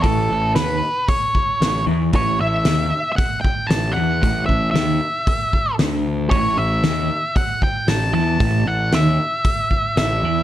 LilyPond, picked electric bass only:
\new Staff \with { instrumentName = "Picked electric bass" } { \clef bass \time 4/4 \key a \mixolydian \tempo 4 = 115 a,,8 a,,8 dis,8 r4. a,,8 e,8 | a,,8 a,,8 dis,8 r4. a,,8 e,8 | a,,8 a,,8 dis,8 r4. d,4 | a,,8 a,,8 dis,8 r4. a,,8 e,8 |
a,,8 a,,8 dis,8 r4. a,,8 e,8 | }